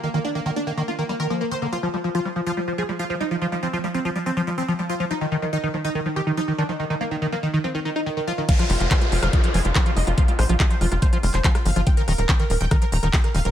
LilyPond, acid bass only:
\new Staff \with { instrumentName = "Acid bass" } { \clef bass \time 4/4 \key ees \mixolydian \tempo 4 = 142 ees16 ees16 bes16 ees16 ees16 bes16 ees16 ees16 bes16 ees16 g16 ees16 f16 ees16 ees16 d16 | f16 f16 g16 f16 f16 g16 f16 f16 g16 f16 f16 g16 f16 f16 g16 f16 | f16 g16 f16 f16 g16 f16 f16 g16 f16 f16 g16 f16 f16 g16 f16 f16 | f16 ees16 ees16 f16 ees16 ees16 f16 ees16 ees16 f16 ees16 ees16 f16 ees16 ees16 f16 |
ees16 ees16 f16 ees16 ees16 f16 ees16 ees16 f16 ees16 ees'16 ees'16 ees16 ees16 f16 ees16 | f16 f16 g16 f16 f16 g16 f16 f16 g16 f16 f16 g16 f16 f16 g16 f16 | f16 g16 f16 f16 g16 f16 f16 g16 f16 f16 g16 f16 f16 g16 f16 f16 | f16 ees16 ees16 f16 ees16 ees16 f16 ees16 ees16 f16 ees16 ees16 f16 ees16 ees16 f16 | }